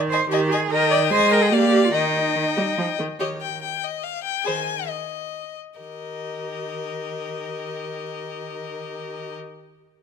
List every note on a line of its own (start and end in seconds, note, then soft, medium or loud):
0.00 0.26 D#3 medium
0.11 0.31 C5 loud
0.11 0.21 D#5 medium
0.11 0.20 G#5 medium
0.30 0.66 D#3 medium
0.30 0.52 G4 loud
0.30 0.41 D#5 medium
0.30 0.39 G#5 medium
0.51 0.72 G#4 loud
0.51 0.61 D#5 medium
0.51 0.60 G#5 medium
0.71 1.12 D#3 medium
0.71 0.90 A#4 loud
0.71 1.09 D#5 medium
0.71 1.12 G5 medium
0.90 0.98 D5 loud
1.11 1.53 G#3 medium
1.11 1.33 C5 loud
1.11 1.55 D#5 medium
1.11 1.35 G#5 medium
1.31 1.44 A#4 loud
1.31 1.54 G5 medium
1.43 1.52 G#4 medium
1.52 1.92 A#3 medium
1.52 1.86 G4 loud
1.52 1.96 D5 medium
1.52 1.93 F5 medium
1.84 1.93 F4 medium
1.93 2.30 D#3 medium
1.93 2.76 D#4 medium
1.93 2.99 D#5 medium
1.93 2.97 G5 medium
2.36 2.44 D#3 medium
2.57 2.65 G3 medium
2.78 2.86 F3 medium
2.99 3.07 D#3 medium
3.19 3.55 D#3 soft
3.19 3.39 G4 soft
3.19 3.39 C#5 soft
3.19 3.28 D#5 medium
3.41 3.62 G5 medium
3.62 3.85 G5 medium
3.84 4.05 D#5 medium
4.03 4.23 F5 medium
4.24 4.46 G5 medium
4.44 4.81 D#3 soft
4.44 4.64 G#4 soft
4.44 4.66 C5 soft
4.44 4.89 G#5 medium
4.88 5.56 D#5 medium
5.79 9.35 D#3 soft
5.79 9.35 G4 soft
5.79 9.35 A#4 soft
5.79 9.35 D#5 soft